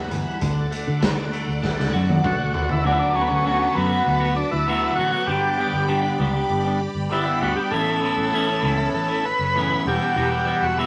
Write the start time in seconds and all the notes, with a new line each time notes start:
Already playing: G3 B3 F#4 E5 F#5 B5
0.11 G1 E3, closed hi-hat
0.40 D2 D3 A4 D5 F#5 D6, kick, closed hi-hat
0.71 A3, closed hi-hat
0.87 D3
1.01 D3, kick, snare, closed hi-hat
1.32 A3, closed hi-hat
1.48 D2
1.62 D4, kick, snare
1.78 C#2, snare
1.93 F#2 F#4
2.09 high tom
2.24 D4 F#4, kick, mid tom
2.39 D2
2.54 D3 F#4, floor tom
2.69 D3 E4, floor tom
2.84 D2 D3 F#3 A3 B3 D4 F#4 B4 A5 D6
2.92 E4
2.99 D4
3.14 F#3 A3 B3 C#4 F#4
3.21 B3
3.27 D2 C#4
3.44 D3 F#3 A3 B3 F#4
3.59 A3 B3 F#4
3.74 F#2 F#3 A3 B3 F#4
3.89 A3 B3 F#4
4.05 D2 B3
4.20 A3 B3 F#4
4.36 D4, muted clean electric guitar stroke
4.51 D2 E4
4.66 D3 F#3 A3 B3 F#4
4.82 A3 B3 F#4
4.96 A1 F#3 A3 B3 F#4
5.12 A3 B3 F#4
5.27 G1 G2 D3 G3 B3 D4 G4 D5 B5
5.58 G3 B3 D4 G4
5.73 G1
5.87 G2 D3 G3 B3 D4 G4
6.02 G3 B3 D4 G4
6.19 C#2 G3 B3 D4 G4
6.33 G3 B3 D4 G4
6.50 G1
6.64 G3 B3 D4 G4
6.80 muted clean electric guitar stroke
6.95 G1
7.09 G2 D3 G3 B3 D4 E4 G4
7.25 G3 B3 D4 G4
7.40 D2 G3 B3 D4 F#4 G4
7.56 G3 B3 D4 G4
7.71 A1 A2 E3 B3 C#4 E4 A4 C#5 E6
8.01 E3 B3 C#4 E4
8.17 A1
8.32 A2 E3 B3 C#4 E4
8.47 B3 C#4 E4
8.62 C#2 E3 B3 C#4 E4
8.78 B3 C#4 E4
8.93 A1 A4
9.08 B3 C#4 E4
9.24 B4, muted clean electric guitar stroke
9.39 F#1
9.55 A2 E3 B3 C#4 E4
9.70 B3 C#4 E4
9.85 E1 E2 B2 E3 G3 B3 F#4 G4 F#5 B5
10.01 E3 G3 B3 F#4
10.14 E1 E2 B2 E3 G3 B3 F#4
10.45 E3 G3 B3 F#4
10.62 E1 F#4
10.76 E2 B2 E3 G3 B3 E4 F#4